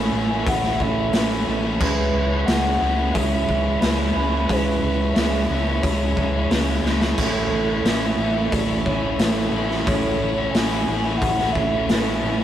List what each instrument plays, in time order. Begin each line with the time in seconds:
Already playing: overdriven electric guitar A2 E3 A3 C#4 E4, analog synth pad A4 E5 C#6, soft synth lead G#5
0.00 overdriven electric guitar A3 C#4
0.12 fingered electric bass A1, overdriven electric guitar E3 A3 C#4, muted overdriven electric guitar stroke
0.17 overdriven electric guitar E4
0.30 overdriven electric guitar A3 C#4 E4
0.47 fingered electric bass A1, overdriven electric guitar E3 A3 C#4 E4, soft synth lead F#5, kick, open hi-hat
0.64 overdriven electric guitar A3 C#4 E4, snare
0.79 fingered electric bass A1, overdriven electric guitar E3 A3 C#4 E4, soft synth lead E5, kick
0.97 overdriven electric guitar A3 C#4 E4
1.13 fingered electric bass A1, overdriven electric guitar A2 E3 A3 C#4, snare, open hi-hat
1.17 overdriven electric guitar E4
1.30 overdriven electric guitar A3 C#4 E4
1.47 fingered electric bass A1, overdriven electric guitar E3 A3 C#4 E4
1.64 overdriven electric guitar A3 C#4 E4
1.80 fingered electric bass C#2, overdriven electric guitar C#3 E3 G#3 C#4 E4, soft synth lead B4, analog synth pad B4 E5 C#6, kick, crash
2.14 fingered electric bass C#2, overdriven electric guitar C#3 G#3 C#4 E4
2.31 overdriven electric guitar G#3 C#4 E4
2.46 fingered electric bass C#2, overdriven electric guitar C#3 E3 G#3 C#4, soft synth lead F#5, snare, open hi-hat
2.50 overdriven electric guitar E4
2.64 overdriven electric guitar G#3 C#4 E4
2.80 fingered electric bass C#2, overdriven electric guitar C#3 G#3 C#4 E4, muted overdriven electric guitar stroke
2.98 overdriven electric guitar G#3 C#4 E4
3.14 fingered electric bass C#2, overdriven electric guitar C#3 G#3 C#4 E4, soft synth lead E5, kick, open hi-hat
3.32 overdriven electric guitar G#3 C#4 E4
3.48 fingered electric bass C#2, overdriven electric guitar E3 G#3 C#4 E4, kick
3.65 overdriven electric guitar G#3 C#4 E4
3.81 fingered electric bass C#2, overdriven electric guitar C#3 E3 G#3 C#4 E4, soft synth lead B5, snare, open hi-hat
3.98 overdriven electric guitar G#3 C#4 E4
4.15 fingered electric bass C#2, overdriven electric guitar C#3 E3 G#3 C#4
4.19 overdriven electric guitar E4
4.33 overdriven electric guitar G#3 C#4 E4
4.49 fingered electric bass C#2, overdriven electric guitar C#3 E3 G#3 C#4 E4, soft synth lead B4, kick, open hi-hat
4.83 fingered electric bass C#2, overdriven electric guitar C#3 G#3 C#4 E4
5.00 overdriven electric guitar G#3 C#4 E4
5.14 fingered electric bass C#2, overdriven electric guitar C#3 E3, soft synth lead E5, snare, open hi-hat
5.18 overdriven electric guitar G#3 C#4 E4
5.33 overdriven electric guitar G#3 C#4 E4
5.50 fingered electric bass C#2, overdriven electric guitar C#3 G#3 C#4 E4, muted overdriven electric guitar stroke
5.67 overdriven electric guitar G#3 C#4 E4
5.82 fingered electric bass C#2, overdriven electric guitar C#3 G#3 C#4, soft synth lead C#5, kick, open hi-hat
5.87 overdriven electric guitar E4
6.00 overdriven electric guitar G#3 C#4 E4
6.17 fingered electric bass C#2, overdriven electric guitar E3 G#3 C#4 E4, kick
6.34 overdriven electric guitar G#3 C#4 E4
6.50 fingered electric bass C#2, overdriven electric guitar C#3 E3 G#3 C#4 E4, snare, open hi-hat
6.68 overdriven electric guitar G#3 C#4 E4
6.83 fingered electric bass C#2, overdriven electric guitar C#3 E3 G#3 C#4 E4, snare
7.00 overdriven electric guitar G#3 C#4 E4, snare
7.17 fingered electric bass A1, overdriven electric guitar A2 E3 A3 C#4 E4, analog synth pad A4, soft synth lead A4, kick, open hi-hat, crash
7.51 fingered electric bass A1, overdriven electric guitar E3 A3 C#4 E4
7.68 overdriven electric guitar A3 C#4 E4
7.83 fingered electric bass A1, overdriven electric guitar A2 E3 A3 C#4 E4, snare, open hi-hat
7.87 soft synth lead E5
8.03 overdriven electric guitar A3 C#4 E4
8.17 fingered electric bass A1, overdriven electric guitar E3 A3 C#4 E4, muted overdriven electric guitar stroke
8.34 overdriven electric guitar A3 C#4 E4
8.50 fingered electric bass A1, overdriven electric guitar E3 A3 C#4 E4, soft synth lead D5, kick, open hi-hat
8.66 overdriven electric guitar A3 C#4 E4
8.85 fingered electric bass A1, overdriven electric guitar E3 A3 C#4, soft synth lead C#5, kick
8.89 overdriven electric guitar E4
9.00 overdriven electric guitar A3 C#4 E4
9.17 fingered electric bass A1, overdriven electric guitar A2 E3 A3 C#4 E4, snare, open hi-hat
9.36 overdriven electric guitar A3 C#4 E4
9.51 fingered electric bass A1, overdriven electric guitar E3 A3 C#4 E4
9.68 overdriven electric guitar A3 C#4 E4, snare
9.85 fingered electric bass A1, overdriven electric guitar A2 E3 A3 C#4 E4, soft synth lead C#5, analog synth pad F#5, kick, open hi-hat
9.90 overdriven electric guitar A3 C#4
10.19 fingered electric bass A1, overdriven electric guitar E3 A3 C#4 E4
10.35 overdriven electric guitar A3 C#4 E4
10.51 fingered electric bass A1, overdriven electric guitar A2 E3 A3 C#4 E4, soft synth lead G#5, open hi-hat
10.55 snare
10.71 overdriven electric guitar A3 C#4 E4
10.87 fingered electric bass A1, overdriven electric guitar E3 A3 C#4 E4, muted overdriven electric guitar stroke
11.04 overdriven electric guitar A3 C#4 E4
11.18 overdriven electric guitar E3, soft synth lead F#5
11.22 fingered electric bass A1, overdriven electric guitar A3 C#4 E4, kick, open hi-hat
11.38 overdriven electric guitar A3 C#4 E4, snare
11.53 fingered electric bass A1, overdriven electric guitar E3, soft synth lead E5, kick
11.57 overdriven electric guitar A3 C#4 E4
11.71 overdriven electric guitar A3 C#4 E4
11.89 fingered electric bass A1, overdriven electric guitar A2 E3 A3 C#4 E4, snare, open hi-hat
12.06 overdriven electric guitar A3 C#4 E4
12.22 fingered electric bass A1, overdriven electric guitar E3 A3 C#4 E4
12.39 overdriven electric guitar C#4 E4